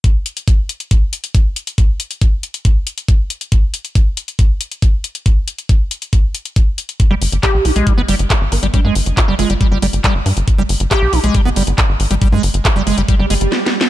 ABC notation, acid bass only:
X:1
M:4/4
L:1/16
Q:1/4=138
K:none
V:1 name="Acid bass" clef=bass
z16 | z16 | z16 | z16 |
z G, z2 G2 D _A, G, B, G, z4 G, | G, _A, z3 G, A, G, G, G, G, z G, z3 | z G, z2 G2 D _A, G, B, G, z4 G, | G, _A, z3 G, A, G, G, G, A, z4 z |]